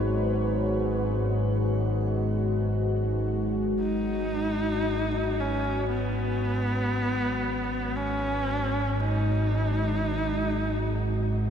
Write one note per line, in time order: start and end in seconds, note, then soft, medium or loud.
0.00 3.74 G#1 medium
0.00 3.74 G#2 medium
0.00 11.50 G#3 medium
0.00 11.50 F#4 medium
0.00 11.50 B4 medium
0.00 11.50 C#5 medium
3.75 11.50 G#1 medium
3.75 11.50 G#2 medium
3.79 5.41 D#4 loud
5.40 5.89 C#4 medium
5.90 7.98 B3 medium
7.96 9.01 C#4 medium
9.00 11.50 D#4 medium